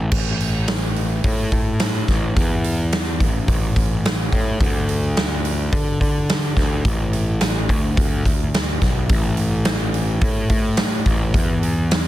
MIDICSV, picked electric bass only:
0, 0, Header, 1, 2, 480
1, 0, Start_track
1, 0, Tempo, 560748
1, 98, Time_signature, 4, 2, 24, 8
1, 10337, End_track
2, 0, Start_track
2, 0, Title_t, "Picked electric bass"
2, 0, Program_c, 0, 34
2, 102, Note_on_c, 0, 33, 90
2, 1024, Note_off_c, 0, 33, 0
2, 1065, Note_on_c, 0, 45, 96
2, 1279, Note_off_c, 0, 45, 0
2, 1307, Note_on_c, 0, 45, 88
2, 1747, Note_off_c, 0, 45, 0
2, 1788, Note_on_c, 0, 33, 82
2, 2000, Note_off_c, 0, 33, 0
2, 2022, Note_on_c, 0, 40, 104
2, 2747, Note_on_c, 0, 33, 79
2, 2760, Note_off_c, 0, 40, 0
2, 2960, Note_off_c, 0, 33, 0
2, 2979, Note_on_c, 0, 33, 95
2, 3195, Note_off_c, 0, 33, 0
2, 3221, Note_on_c, 0, 33, 78
2, 3663, Note_off_c, 0, 33, 0
2, 3705, Note_on_c, 0, 45, 87
2, 3918, Note_off_c, 0, 45, 0
2, 3939, Note_on_c, 0, 38, 92
2, 4863, Note_off_c, 0, 38, 0
2, 4904, Note_on_c, 0, 50, 99
2, 5119, Note_off_c, 0, 50, 0
2, 5144, Note_on_c, 0, 50, 90
2, 5586, Note_off_c, 0, 50, 0
2, 5622, Note_on_c, 0, 38, 84
2, 5838, Note_off_c, 0, 38, 0
2, 5864, Note_on_c, 0, 33, 96
2, 6585, Note_off_c, 0, 33, 0
2, 6585, Note_on_c, 0, 38, 85
2, 6800, Note_off_c, 0, 38, 0
2, 6826, Note_on_c, 0, 38, 98
2, 7041, Note_off_c, 0, 38, 0
2, 7069, Note_on_c, 0, 38, 76
2, 7510, Note_off_c, 0, 38, 0
2, 7551, Note_on_c, 0, 35, 82
2, 7764, Note_off_c, 0, 35, 0
2, 7789, Note_on_c, 0, 33, 92
2, 8711, Note_off_c, 0, 33, 0
2, 8745, Note_on_c, 0, 45, 91
2, 8961, Note_off_c, 0, 45, 0
2, 8990, Note_on_c, 0, 45, 87
2, 9432, Note_off_c, 0, 45, 0
2, 9466, Note_on_c, 0, 33, 80
2, 9683, Note_off_c, 0, 33, 0
2, 9709, Note_on_c, 0, 40, 97
2, 10337, Note_off_c, 0, 40, 0
2, 10337, End_track
0, 0, End_of_file